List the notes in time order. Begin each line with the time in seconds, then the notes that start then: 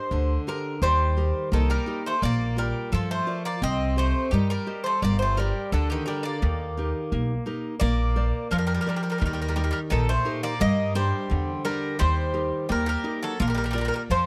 Already playing: D4 G4 A#4 C5
0.11 D2 D3
0.47 D4 G4 A#4
0.82 D#2 D#3 G3 C5
1.17 D#4 G4 A#4
1.52 C2 D#3 A#3 A4
1.70 G3 A#4
1.86 D#4 G4 A#4
2.06 A3 C5
2.22 A#1 A#3 D5
2.56 G3 F4 A#4 D5
2.92 G2 F3 A4
3.11 A3 C5
3.27 F4 A#4 D5
3.45 A#3 D5
3.62 C2 C4 D#5
3.96 A3 G4 C5 D#5
4.31 G2 D#3 G3 G4
4.50 G3 A#4
4.66 G4 C5 D#5
4.84 A3 C5
5.02 G1 G3 A#3 D5
5.19 A3 C5
5.37 G3 G4 A#4 D5
5.72 D2 D3 A4
5.90 D#3 G4
6.06 G3 G4 A#4 D5
6.23 A#3 D5
6.42 D#2 D#3
6.77 D#4 G4 A#4
7.12 B1 A#3
7.46 D#4 G4 A#4
7.80 A#1 A#3 D5
8.16 A#4 C5 D5
8.51 F2 F3 A#4
8.58 G3 A#4
8.67 G3 A#4
8.74 G3 A#4
8.81 G3 A#4
8.87 G3 A#4 C5 D5
8.96 G3 A#4
9.03 G3 A#4
9.10 G3 A#4
9.18 D#2 D#3 G3 A#4
9.26 G3 A#4
9.33 G3 A#4
9.41 G3 A#4
9.48 G3 A#4
9.56 G3 D#4 G4 A#4
9.64 G3 A#4
9.71 G3 A#4
9.90 A#1 A#2 D#3 A4
10.09 A3 C5
10.25 D#4 G4 A#4
10.43 A#3 D5
10.60 G2 G3 A#3 D#5
10.95 G3 D4 G4 A#4 C5
11.30 E2 D3
11.65 G3 D4 G4 A#4
11.99 D#2 D#3 G3 C5
12.34 D#4 G4 A#4
12.69 D#2 G3 A#3 A#4
12.86 G3 A#4
13.04 D#4 G4 A#4
13.23 F#3 A4
13.40 A#1 F3 A#3 A#4
13.48 G3 A#4
13.54 G3 A#4
13.64 G3 A#4
13.71 G3 F4 A#4
13.75 G3 D5
13.81 G3 A#4
13.88 A#4
13.94 G3 A#4
14.10 F2 F3 C5